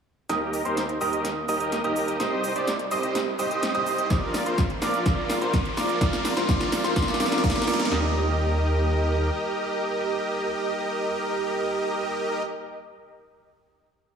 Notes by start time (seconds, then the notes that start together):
0.29 D#2 G4 A#4 D#5 D#6, snare, closed hi-hat, riser, shaker
0.53 open hi-hat, shaker
0.65 D#2 G4 A#4 C5 C6, closed hi-hat, shaker
0.77 snare, closed hi-hat, shaker
0.89 closed hi-hat
1.01 D#2 G4 A#4 D#5 D#6, open hi-hat, shaker
1.13 closed hi-hat, shaker
1.25 snare, closed hi-hat, shaker
1.48 D#2 G4 A#4 D#5 D#6, open hi-hat, shaker
1.60 closed hi-hat, shaker
1.72 snare, closed hi-hat, shaker
1.84 D#2 G4 A#4 D#5 D#6, closed hi-hat
1.96 open hi-hat, shaker
2.08 closed hi-hat, shaker
2.20 C2 G4 C5 D#5 D#6, snare, closed hi-hat, shaker
2.44 open hi-hat, shaker
2.56 C2 G4 C5 D5 D6, closed hi-hat, shaker
2.67 snare, closed hi-hat, shaker
2.79 closed hi-hat
2.91 C2 G4 C5 D#5 D#6, open hi-hat, shaker
3.03 closed hi-hat, shaker
3.15 snare, closed hi-hat, shaker
3.39 C2 G4 C5 D#5 D#6, open hi-hat, shaker
3.51 closed hi-hat, shaker
3.63 snare, closed hi-hat, shaker
3.75 C2 G4 C5 D#5 D#6, closed hi-hat
3.86 open hi-hat, shaker
3.98 closed hi-hat, shaker
4.10 A#1 F4 A#4 D5 D6, kick, snare, closed hi-hat, shaker
4.34 snare, open hi-hat, shaker
4.46 A#1 F4 A#4 C5 C6, closed hi-hat, shaker
4.58 kick, snare, closed hi-hat, shaker
4.70 closed hi-hat
4.82 A#1 F4 A#4 D5 D6, snare, open hi-hat, shaker
4.94 closed hi-hat, shaker
5.06 A#1 F4 A#4 D5 D6, kick, snare, closed hi-hat, shaker
5.30 snare, open hi-hat, shaker
5.41 A#1 F4 A#4 C5 C6, closed hi-hat, shaker
5.53 kick, snare, closed hi-hat, shaker
5.65 closed hi-hat
5.77 A#1 F4 A#4 D5 D6, snare, open hi-hat, shaker
5.89 closed hi-hat, shaker
6.01 C2 F4 A#4 D5 D6, kick, snare, closed hi-hat, shaker
6.13 snare, shaker
6.25 snare, open hi-hat, shaker
6.37 C2 F4 A#4 C5 C6, snare, closed hi-hat, shaker
6.49 C2 F4 A#4 D5 D6, kick, snare, closed hi-hat, shaker
6.60 snare, closed hi-hat
6.72 snare, open hi-hat, shaker
6.84 C2 F4 A#4 C5 C6, snare, closed hi-hat, shaker
6.96 C2 F4 A#4 D5 D6, kick, snare, closed hi-hat, shaker
7.02 snare
7.08 snare, closed hi-hat
7.14 snare
7.20 C2 F4 A#4 D5 D6, snare, open hi-hat, shaker
7.26 snare
7.32 snare, closed hi-hat, shaker
7.38 snare
7.44 C2 F4 A#4 D5 D6, kick, snare, closed hi-hat, shaker
7.50 snare
7.56 snare, closed hi-hat
7.62 snare
7.68 D#2 F4 A#4 D5 D6, snare, open hi-hat, shaker
7.73 snare
7.79 snare, closed hi-hat, shaker
7.85 snare
7.91 D#2 G4 A#4 D#5 D#6, snare